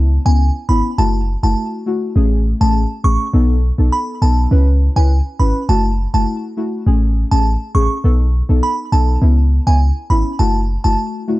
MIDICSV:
0, 0, Header, 1, 4, 480
1, 0, Start_track
1, 0, Key_signature, 4, "minor"
1, 0, Tempo, 588235
1, 1762, Time_signature, 4, 2, 24, 8
1, 9298, End_track
2, 0, Start_track
2, 0, Title_t, "Synth bell"
2, 0, Program_c, 0, 98
2, 210, Note_on_c, 0, 80, 82
2, 305, Note_off_c, 0, 80, 0
2, 561, Note_on_c, 0, 83, 72
2, 669, Note_off_c, 0, 83, 0
2, 803, Note_on_c, 0, 81, 86
2, 910, Note_off_c, 0, 81, 0
2, 1170, Note_on_c, 0, 81, 72
2, 1265, Note_off_c, 0, 81, 0
2, 2130, Note_on_c, 0, 81, 79
2, 2225, Note_off_c, 0, 81, 0
2, 2483, Note_on_c, 0, 85, 85
2, 2590, Note_off_c, 0, 85, 0
2, 3202, Note_on_c, 0, 83, 78
2, 3310, Note_off_c, 0, 83, 0
2, 3443, Note_on_c, 0, 81, 80
2, 3550, Note_off_c, 0, 81, 0
2, 4050, Note_on_c, 0, 80, 80
2, 4145, Note_off_c, 0, 80, 0
2, 4402, Note_on_c, 0, 83, 68
2, 4510, Note_off_c, 0, 83, 0
2, 4643, Note_on_c, 0, 81, 83
2, 4750, Note_off_c, 0, 81, 0
2, 5009, Note_on_c, 0, 81, 70
2, 5105, Note_off_c, 0, 81, 0
2, 5968, Note_on_c, 0, 81, 80
2, 6064, Note_off_c, 0, 81, 0
2, 6321, Note_on_c, 0, 85, 83
2, 6429, Note_off_c, 0, 85, 0
2, 7042, Note_on_c, 0, 83, 79
2, 7150, Note_off_c, 0, 83, 0
2, 7282, Note_on_c, 0, 81, 77
2, 7390, Note_off_c, 0, 81, 0
2, 7890, Note_on_c, 0, 80, 81
2, 7985, Note_off_c, 0, 80, 0
2, 8242, Note_on_c, 0, 83, 71
2, 8350, Note_off_c, 0, 83, 0
2, 8480, Note_on_c, 0, 81, 85
2, 8588, Note_off_c, 0, 81, 0
2, 8847, Note_on_c, 0, 81, 75
2, 8944, Note_off_c, 0, 81, 0
2, 9298, End_track
3, 0, Start_track
3, 0, Title_t, "Synth stab"
3, 0, Program_c, 1, 62
3, 0, Note_on_c, 1, 59, 93
3, 0, Note_on_c, 1, 61, 87
3, 0, Note_on_c, 1, 64, 104
3, 177, Note_off_c, 1, 59, 0
3, 178, Note_off_c, 1, 61, 0
3, 180, Note_off_c, 1, 64, 0
3, 207, Note_on_c, 1, 59, 80
3, 209, Note_on_c, 1, 61, 71
3, 211, Note_on_c, 1, 64, 87
3, 381, Note_off_c, 1, 59, 0
3, 383, Note_off_c, 1, 61, 0
3, 384, Note_off_c, 1, 64, 0
3, 560, Note_on_c, 1, 59, 78
3, 562, Note_on_c, 1, 61, 69
3, 565, Note_on_c, 1, 64, 89
3, 742, Note_off_c, 1, 59, 0
3, 743, Note_off_c, 1, 61, 0
3, 744, Note_off_c, 1, 64, 0
3, 799, Note_on_c, 1, 57, 92
3, 801, Note_on_c, 1, 64, 84
3, 804, Note_on_c, 1, 66, 101
3, 981, Note_off_c, 1, 57, 0
3, 983, Note_off_c, 1, 64, 0
3, 984, Note_off_c, 1, 66, 0
3, 1167, Note_on_c, 1, 57, 80
3, 1168, Note_on_c, 1, 64, 71
3, 1171, Note_on_c, 1, 66, 82
3, 1494, Note_off_c, 1, 57, 0
3, 1494, Note_off_c, 1, 64, 0
3, 1496, Note_off_c, 1, 66, 0
3, 1518, Note_on_c, 1, 57, 77
3, 1521, Note_on_c, 1, 64, 72
3, 1523, Note_on_c, 1, 66, 85
3, 1742, Note_off_c, 1, 57, 0
3, 1743, Note_off_c, 1, 64, 0
3, 1745, Note_off_c, 1, 66, 0
3, 1757, Note_on_c, 1, 57, 98
3, 1760, Note_on_c, 1, 61, 85
3, 1762, Note_on_c, 1, 68, 104
3, 2096, Note_off_c, 1, 57, 0
3, 2097, Note_off_c, 1, 61, 0
3, 2099, Note_off_c, 1, 68, 0
3, 2125, Note_on_c, 1, 57, 78
3, 2127, Note_on_c, 1, 61, 73
3, 2130, Note_on_c, 1, 68, 84
3, 2300, Note_off_c, 1, 57, 0
3, 2302, Note_off_c, 1, 61, 0
3, 2303, Note_off_c, 1, 68, 0
3, 2477, Note_on_c, 1, 57, 76
3, 2480, Note_on_c, 1, 61, 73
3, 2483, Note_on_c, 1, 68, 83
3, 2660, Note_off_c, 1, 57, 0
3, 2662, Note_off_c, 1, 61, 0
3, 2663, Note_off_c, 1, 68, 0
3, 2718, Note_on_c, 1, 59, 94
3, 2720, Note_on_c, 1, 63, 87
3, 2723, Note_on_c, 1, 69, 105
3, 2901, Note_off_c, 1, 59, 0
3, 2902, Note_off_c, 1, 63, 0
3, 2903, Note_off_c, 1, 69, 0
3, 3087, Note_on_c, 1, 59, 77
3, 3089, Note_on_c, 1, 63, 72
3, 3091, Note_on_c, 1, 69, 85
3, 3414, Note_off_c, 1, 59, 0
3, 3415, Note_off_c, 1, 63, 0
3, 3416, Note_off_c, 1, 69, 0
3, 3441, Note_on_c, 1, 59, 79
3, 3442, Note_on_c, 1, 63, 69
3, 3445, Note_on_c, 1, 69, 87
3, 3663, Note_off_c, 1, 59, 0
3, 3664, Note_off_c, 1, 63, 0
3, 3665, Note_off_c, 1, 69, 0
3, 3679, Note_on_c, 1, 61, 96
3, 3682, Note_on_c, 1, 64, 83
3, 3685, Note_on_c, 1, 71, 102
3, 4017, Note_off_c, 1, 61, 0
3, 4018, Note_off_c, 1, 64, 0
3, 4020, Note_off_c, 1, 71, 0
3, 4047, Note_on_c, 1, 61, 82
3, 4049, Note_on_c, 1, 64, 69
3, 4052, Note_on_c, 1, 71, 88
3, 4221, Note_off_c, 1, 61, 0
3, 4223, Note_off_c, 1, 64, 0
3, 4224, Note_off_c, 1, 71, 0
3, 4400, Note_on_c, 1, 61, 79
3, 4402, Note_on_c, 1, 64, 68
3, 4404, Note_on_c, 1, 71, 82
3, 4582, Note_off_c, 1, 61, 0
3, 4583, Note_off_c, 1, 64, 0
3, 4584, Note_off_c, 1, 71, 0
3, 4640, Note_on_c, 1, 57, 93
3, 4642, Note_on_c, 1, 64, 85
3, 4645, Note_on_c, 1, 66, 104
3, 4822, Note_off_c, 1, 57, 0
3, 4823, Note_off_c, 1, 64, 0
3, 4824, Note_off_c, 1, 66, 0
3, 5007, Note_on_c, 1, 57, 78
3, 5009, Note_on_c, 1, 64, 72
3, 5012, Note_on_c, 1, 66, 87
3, 5334, Note_off_c, 1, 57, 0
3, 5335, Note_off_c, 1, 64, 0
3, 5336, Note_off_c, 1, 66, 0
3, 5358, Note_on_c, 1, 57, 74
3, 5361, Note_on_c, 1, 64, 74
3, 5364, Note_on_c, 1, 66, 83
3, 5582, Note_off_c, 1, 57, 0
3, 5583, Note_off_c, 1, 64, 0
3, 5585, Note_off_c, 1, 66, 0
3, 5599, Note_on_c, 1, 57, 95
3, 5602, Note_on_c, 1, 61, 84
3, 5604, Note_on_c, 1, 68, 102
3, 5937, Note_off_c, 1, 57, 0
3, 5938, Note_off_c, 1, 61, 0
3, 5939, Note_off_c, 1, 68, 0
3, 5967, Note_on_c, 1, 57, 80
3, 5969, Note_on_c, 1, 61, 72
3, 5972, Note_on_c, 1, 68, 87
3, 6141, Note_off_c, 1, 57, 0
3, 6142, Note_off_c, 1, 61, 0
3, 6144, Note_off_c, 1, 68, 0
3, 6319, Note_on_c, 1, 57, 80
3, 6322, Note_on_c, 1, 61, 71
3, 6324, Note_on_c, 1, 68, 89
3, 6501, Note_off_c, 1, 57, 0
3, 6503, Note_off_c, 1, 61, 0
3, 6504, Note_off_c, 1, 68, 0
3, 6559, Note_on_c, 1, 59, 95
3, 6561, Note_on_c, 1, 63, 86
3, 6564, Note_on_c, 1, 69, 103
3, 6741, Note_off_c, 1, 59, 0
3, 6742, Note_off_c, 1, 63, 0
3, 6744, Note_off_c, 1, 69, 0
3, 6926, Note_on_c, 1, 59, 73
3, 6928, Note_on_c, 1, 63, 69
3, 6931, Note_on_c, 1, 69, 86
3, 7253, Note_off_c, 1, 59, 0
3, 7254, Note_off_c, 1, 63, 0
3, 7256, Note_off_c, 1, 69, 0
3, 7280, Note_on_c, 1, 59, 79
3, 7282, Note_on_c, 1, 63, 73
3, 7284, Note_on_c, 1, 69, 85
3, 7503, Note_off_c, 1, 59, 0
3, 7504, Note_off_c, 1, 63, 0
3, 7505, Note_off_c, 1, 69, 0
3, 7519, Note_on_c, 1, 59, 98
3, 7522, Note_on_c, 1, 61, 84
3, 7523, Note_on_c, 1, 64, 102
3, 7857, Note_off_c, 1, 59, 0
3, 7858, Note_off_c, 1, 61, 0
3, 7859, Note_off_c, 1, 64, 0
3, 7887, Note_on_c, 1, 59, 78
3, 7889, Note_on_c, 1, 61, 73
3, 7892, Note_on_c, 1, 64, 86
3, 8062, Note_off_c, 1, 59, 0
3, 8062, Note_off_c, 1, 61, 0
3, 8064, Note_off_c, 1, 64, 0
3, 8241, Note_on_c, 1, 59, 78
3, 8244, Note_on_c, 1, 61, 72
3, 8246, Note_on_c, 1, 64, 89
3, 8422, Note_off_c, 1, 59, 0
3, 8424, Note_off_c, 1, 61, 0
3, 8425, Note_off_c, 1, 64, 0
3, 8480, Note_on_c, 1, 57, 94
3, 8482, Note_on_c, 1, 64, 86
3, 8485, Note_on_c, 1, 66, 106
3, 8662, Note_off_c, 1, 57, 0
3, 8663, Note_off_c, 1, 64, 0
3, 8664, Note_off_c, 1, 66, 0
3, 8848, Note_on_c, 1, 57, 74
3, 8850, Note_on_c, 1, 64, 72
3, 8852, Note_on_c, 1, 66, 81
3, 9174, Note_off_c, 1, 57, 0
3, 9175, Note_off_c, 1, 64, 0
3, 9176, Note_off_c, 1, 66, 0
3, 9200, Note_on_c, 1, 57, 77
3, 9202, Note_on_c, 1, 64, 67
3, 9205, Note_on_c, 1, 66, 88
3, 9298, Note_off_c, 1, 57, 0
3, 9298, Note_off_c, 1, 64, 0
3, 9298, Note_off_c, 1, 66, 0
3, 9298, End_track
4, 0, Start_track
4, 0, Title_t, "808-style bass"
4, 0, Program_c, 2, 38
4, 0, Note_on_c, 2, 37, 118
4, 151, Note_off_c, 2, 37, 0
4, 209, Note_on_c, 2, 37, 107
4, 411, Note_off_c, 2, 37, 0
4, 561, Note_on_c, 2, 32, 90
4, 668, Note_off_c, 2, 32, 0
4, 802, Note_on_c, 2, 30, 103
4, 1111, Note_off_c, 2, 30, 0
4, 1168, Note_on_c, 2, 30, 90
4, 1263, Note_off_c, 2, 30, 0
4, 1761, Note_on_c, 2, 33, 104
4, 2070, Note_off_c, 2, 33, 0
4, 2129, Note_on_c, 2, 33, 94
4, 2331, Note_off_c, 2, 33, 0
4, 2483, Note_on_c, 2, 33, 100
4, 2589, Note_off_c, 2, 33, 0
4, 2722, Note_on_c, 2, 35, 107
4, 3031, Note_off_c, 2, 35, 0
4, 3088, Note_on_c, 2, 35, 87
4, 3183, Note_off_c, 2, 35, 0
4, 3441, Note_on_c, 2, 35, 92
4, 3643, Note_off_c, 2, 35, 0
4, 3682, Note_on_c, 2, 37, 121
4, 3991, Note_off_c, 2, 37, 0
4, 4049, Note_on_c, 2, 37, 101
4, 4251, Note_off_c, 2, 37, 0
4, 4402, Note_on_c, 2, 32, 95
4, 4509, Note_off_c, 2, 32, 0
4, 4641, Note_on_c, 2, 30, 108
4, 4950, Note_off_c, 2, 30, 0
4, 5008, Note_on_c, 2, 30, 85
4, 5104, Note_off_c, 2, 30, 0
4, 5602, Note_on_c, 2, 33, 109
4, 5911, Note_off_c, 2, 33, 0
4, 5970, Note_on_c, 2, 33, 96
4, 6171, Note_off_c, 2, 33, 0
4, 6322, Note_on_c, 2, 33, 92
4, 6429, Note_off_c, 2, 33, 0
4, 6563, Note_on_c, 2, 35, 102
4, 6871, Note_off_c, 2, 35, 0
4, 6930, Note_on_c, 2, 35, 87
4, 7024, Note_off_c, 2, 35, 0
4, 7281, Note_on_c, 2, 35, 91
4, 7483, Note_off_c, 2, 35, 0
4, 7521, Note_on_c, 2, 37, 115
4, 7830, Note_off_c, 2, 37, 0
4, 7889, Note_on_c, 2, 37, 103
4, 8091, Note_off_c, 2, 37, 0
4, 8242, Note_on_c, 2, 32, 92
4, 8349, Note_off_c, 2, 32, 0
4, 8482, Note_on_c, 2, 30, 104
4, 8791, Note_off_c, 2, 30, 0
4, 8851, Note_on_c, 2, 30, 89
4, 8945, Note_off_c, 2, 30, 0
4, 9298, End_track
0, 0, End_of_file